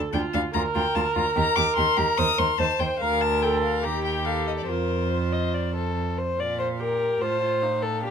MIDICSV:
0, 0, Header, 1, 5, 480
1, 0, Start_track
1, 0, Key_signature, -2, "major"
1, 0, Tempo, 409556
1, 1602, Time_signature, 4, 2, 24, 8
1, 3521, Tempo, 422238
1, 7361, Tempo, 411241
1, 9372, End_track
2, 0, Start_track
2, 0, Title_t, "Violin"
2, 0, Program_c, 0, 40
2, 148, Note_on_c, 0, 79, 84
2, 242, Note_off_c, 0, 79, 0
2, 393, Note_on_c, 0, 77, 89
2, 487, Note_off_c, 0, 77, 0
2, 627, Note_on_c, 0, 82, 103
2, 721, Note_off_c, 0, 82, 0
2, 875, Note_on_c, 0, 79, 94
2, 1119, Note_on_c, 0, 81, 82
2, 1136, Note_off_c, 0, 79, 0
2, 1342, Note_off_c, 0, 81, 0
2, 1349, Note_on_c, 0, 82, 93
2, 1579, Note_off_c, 0, 82, 0
2, 1586, Note_on_c, 0, 82, 112
2, 1825, Note_on_c, 0, 86, 101
2, 1843, Note_off_c, 0, 82, 0
2, 2059, Note_off_c, 0, 86, 0
2, 2066, Note_on_c, 0, 84, 98
2, 2309, Note_on_c, 0, 82, 98
2, 2327, Note_off_c, 0, 84, 0
2, 2551, Note_on_c, 0, 87, 113
2, 2568, Note_off_c, 0, 82, 0
2, 2793, Note_on_c, 0, 84, 97
2, 2811, Note_off_c, 0, 87, 0
2, 3026, Note_on_c, 0, 81, 106
2, 3044, Note_off_c, 0, 84, 0
2, 3279, Note_on_c, 0, 79, 87
2, 3297, Note_off_c, 0, 81, 0
2, 3505, Note_off_c, 0, 79, 0
2, 3512, Note_on_c, 0, 77, 96
2, 3755, Note_on_c, 0, 81, 95
2, 3772, Note_off_c, 0, 77, 0
2, 3997, Note_on_c, 0, 79, 81
2, 4014, Note_off_c, 0, 81, 0
2, 4221, Note_off_c, 0, 79, 0
2, 4227, Note_on_c, 0, 77, 80
2, 4468, Note_on_c, 0, 82, 95
2, 4485, Note_off_c, 0, 77, 0
2, 4696, Note_off_c, 0, 82, 0
2, 4703, Note_on_c, 0, 79, 78
2, 4941, Note_on_c, 0, 77, 79
2, 4958, Note_off_c, 0, 79, 0
2, 5185, Note_off_c, 0, 77, 0
2, 5191, Note_on_c, 0, 75, 67
2, 5239, Note_off_c, 0, 75, 0
2, 5310, Note_on_c, 0, 74, 64
2, 5409, Note_off_c, 0, 74, 0
2, 5416, Note_on_c, 0, 72, 73
2, 7080, Note_off_c, 0, 72, 0
2, 7364, Note_on_c, 0, 77, 48
2, 7854, Note_on_c, 0, 79, 44
2, 7872, Note_off_c, 0, 77, 0
2, 8322, Note_off_c, 0, 79, 0
2, 8329, Note_on_c, 0, 81, 52
2, 8795, Note_off_c, 0, 81, 0
2, 8804, Note_on_c, 0, 77, 48
2, 9372, Note_off_c, 0, 77, 0
2, 9372, End_track
3, 0, Start_track
3, 0, Title_t, "Violin"
3, 0, Program_c, 1, 40
3, 161, Note_on_c, 1, 62, 63
3, 254, Note_off_c, 1, 62, 0
3, 404, Note_on_c, 1, 62, 58
3, 497, Note_off_c, 1, 62, 0
3, 635, Note_on_c, 1, 65, 63
3, 729, Note_off_c, 1, 65, 0
3, 873, Note_on_c, 1, 65, 54
3, 967, Note_off_c, 1, 65, 0
3, 1112, Note_on_c, 1, 65, 63
3, 1206, Note_off_c, 1, 65, 0
3, 1351, Note_on_c, 1, 65, 65
3, 1444, Note_off_c, 1, 65, 0
3, 1588, Note_on_c, 1, 67, 62
3, 1682, Note_off_c, 1, 67, 0
3, 1828, Note_on_c, 1, 67, 58
3, 1921, Note_off_c, 1, 67, 0
3, 2071, Note_on_c, 1, 67, 59
3, 2165, Note_off_c, 1, 67, 0
3, 2305, Note_on_c, 1, 67, 64
3, 2399, Note_off_c, 1, 67, 0
3, 2553, Note_on_c, 1, 72, 65
3, 2646, Note_off_c, 1, 72, 0
3, 2786, Note_on_c, 1, 72, 61
3, 2880, Note_off_c, 1, 72, 0
3, 3033, Note_on_c, 1, 72, 60
3, 3126, Note_off_c, 1, 72, 0
3, 3273, Note_on_c, 1, 72, 61
3, 3367, Note_off_c, 1, 72, 0
3, 3516, Note_on_c, 1, 70, 69
3, 4470, Note_on_c, 1, 67, 63
3, 4487, Note_off_c, 1, 70, 0
3, 4942, Note_on_c, 1, 69, 55
3, 4959, Note_off_c, 1, 67, 0
3, 5431, Note_on_c, 1, 70, 51
3, 5448, Note_off_c, 1, 69, 0
3, 5866, Note_off_c, 1, 70, 0
3, 5922, Note_on_c, 1, 72, 62
3, 6159, Note_on_c, 1, 75, 59
3, 6176, Note_off_c, 1, 72, 0
3, 6401, Note_on_c, 1, 74, 54
3, 6418, Note_off_c, 1, 75, 0
3, 6638, Note_off_c, 1, 74, 0
3, 6645, Note_on_c, 1, 69, 58
3, 7127, Note_on_c, 1, 72, 58
3, 7144, Note_off_c, 1, 69, 0
3, 7377, Note_on_c, 1, 74, 65
3, 7394, Note_off_c, 1, 72, 0
3, 7600, Note_off_c, 1, 74, 0
3, 7607, Note_on_c, 1, 72, 56
3, 7701, Note_off_c, 1, 72, 0
3, 7849, Note_on_c, 1, 70, 62
3, 8327, Note_on_c, 1, 72, 66
3, 8345, Note_off_c, 1, 70, 0
3, 9039, Note_on_c, 1, 69, 61
3, 9056, Note_off_c, 1, 72, 0
3, 9278, Note_off_c, 1, 69, 0
3, 9285, Note_on_c, 1, 67, 66
3, 9372, Note_off_c, 1, 67, 0
3, 9372, End_track
4, 0, Start_track
4, 0, Title_t, "Viola"
4, 0, Program_c, 2, 41
4, 0, Note_on_c, 2, 69, 70
4, 147, Note_off_c, 2, 69, 0
4, 154, Note_on_c, 2, 65, 67
4, 626, Note_off_c, 2, 65, 0
4, 633, Note_on_c, 2, 70, 89
4, 2986, Note_off_c, 2, 70, 0
4, 3037, Note_on_c, 2, 72, 73
4, 3523, Note_on_c, 2, 70, 69
4, 3540, Note_off_c, 2, 72, 0
4, 3992, Note_off_c, 2, 70, 0
4, 3998, Note_on_c, 2, 69, 70
4, 4461, Note_off_c, 2, 69, 0
4, 4472, Note_on_c, 2, 67, 72
4, 5431, Note_on_c, 2, 65, 54
4, 5448, Note_off_c, 2, 67, 0
4, 7121, Note_off_c, 2, 65, 0
4, 7354, Note_on_c, 2, 65, 39
4, 7841, Note_on_c, 2, 67, 44
4, 7859, Note_off_c, 2, 65, 0
4, 8323, Note_on_c, 2, 65, 50
4, 8340, Note_off_c, 2, 67, 0
4, 8553, Note_off_c, 2, 65, 0
4, 8560, Note_on_c, 2, 65, 46
4, 8801, Note_on_c, 2, 63, 42
4, 8818, Note_off_c, 2, 65, 0
4, 9275, Note_on_c, 2, 62, 47
4, 9293, Note_off_c, 2, 63, 0
4, 9372, Note_off_c, 2, 62, 0
4, 9372, End_track
5, 0, Start_track
5, 0, Title_t, "Cello"
5, 0, Program_c, 3, 42
5, 164, Note_on_c, 3, 38, 69
5, 258, Note_off_c, 3, 38, 0
5, 407, Note_on_c, 3, 38, 68
5, 500, Note_off_c, 3, 38, 0
5, 648, Note_on_c, 3, 38, 69
5, 742, Note_off_c, 3, 38, 0
5, 891, Note_on_c, 3, 38, 70
5, 984, Note_off_c, 3, 38, 0
5, 1125, Note_on_c, 3, 38, 70
5, 1219, Note_off_c, 3, 38, 0
5, 1367, Note_on_c, 3, 38, 65
5, 1461, Note_off_c, 3, 38, 0
5, 1603, Note_on_c, 3, 39, 79
5, 1696, Note_off_c, 3, 39, 0
5, 1844, Note_on_c, 3, 39, 65
5, 1938, Note_off_c, 3, 39, 0
5, 2083, Note_on_c, 3, 39, 73
5, 2177, Note_off_c, 3, 39, 0
5, 2321, Note_on_c, 3, 39, 65
5, 2415, Note_off_c, 3, 39, 0
5, 2566, Note_on_c, 3, 39, 75
5, 2659, Note_off_c, 3, 39, 0
5, 2802, Note_on_c, 3, 39, 69
5, 2896, Note_off_c, 3, 39, 0
5, 3038, Note_on_c, 3, 39, 70
5, 3132, Note_off_c, 3, 39, 0
5, 3280, Note_on_c, 3, 39, 62
5, 3374, Note_off_c, 3, 39, 0
5, 3527, Note_on_c, 3, 38, 74
5, 4472, Note_on_c, 3, 39, 66
5, 4489, Note_off_c, 3, 38, 0
5, 5422, Note_off_c, 3, 39, 0
5, 5429, Note_on_c, 3, 41, 62
5, 7096, Note_off_c, 3, 41, 0
5, 7362, Note_on_c, 3, 46, 46
5, 8281, Note_off_c, 3, 46, 0
5, 8333, Note_on_c, 3, 45, 49
5, 9282, Note_on_c, 3, 46, 52
5, 9300, Note_off_c, 3, 45, 0
5, 9372, Note_off_c, 3, 46, 0
5, 9372, End_track
0, 0, End_of_file